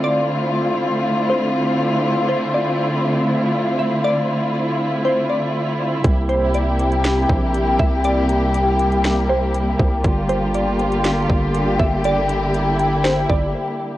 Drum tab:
HH |----------------|----------------|----------------|x-x-x-xxx---x---|
SD |----------------|----------------|----------------|--------o-------|
BD |----------------|----------------|----------------|o---------o---o-|

HH |x-x-x-xxx---x---|x-x-x-xxx---x---|x-x-x-x-x-------|
SD |--------o-------|--------o-------|--------o-------|
BD |--------------o-|o---------o---o-|----------o-----|